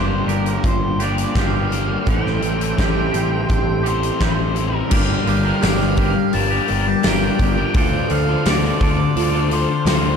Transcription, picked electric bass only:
0.00 0.22 G1 medium
0.27 0.57 G1 medium
0.64 1.24 G1 medium
1.35 1.96 G1 medium
2.08 2.37 A1 medium
2.43 2.73 A1 medium
2.79 3.09 A1 medium
3.14 3.44 A1 medium
3.50 4.10 A1 medium
4.21 4.81 A1 medium
4.92 5.16 G1 loud
5.27 5.51 G1 medium
5.63 6.11 G1 medium
6.35 6.58 G1 loud
6.71 6.94 G1 medium
7.05 7.29 G1 loud
7.39 7.63 G1 medium
7.75 7.99 D2 loud
8.10 8.34 D2 medium
8.46 8.70 D2 loud
8.80 9.05 D2 medium
9.16 9.64 D2 loud
9.85 10.17 D2 medium

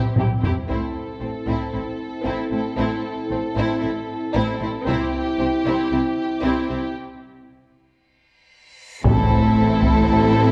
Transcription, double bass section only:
0.18 0.26 C2 soft
0.44 0.52 C2 soft
0.69 0.77 A1 soft
1.20 1.28 A1 soft
1.47 1.55 A1 soft
1.73 1.81 A1 soft
2.26 2.34 A1 soft
2.51 2.59 A1 soft
2.78 2.86 A1 soft
3.30 3.38 A1 soft
3.56 3.64 A1 medium
3.83 3.91 A1 soft
4.35 4.43 A1 medium
4.60 4.68 A1 soft
4.86 4.94 C2 medium
5.39 5.47 C2 soft
5.65 5.73 C2 medium
5.91 5.99 C2 soft
6.43 6.51 C2 soft
6.69 6.77 C2 soft
9.05 10.52 A1 medium

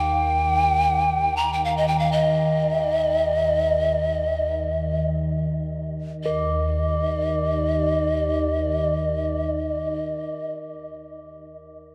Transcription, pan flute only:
0.00 1.38 G5 medium
1.37 1.55 A#5 medium
1.53 1.66 G5 medium
1.65 1.79 F5 medium
1.77 1.89 D#5 medium
1.88 2.01 G5 medium
1.99 2.14 F5 medium
2.12 5.03 D#5 medium
6.23 10.52 D#5 medium

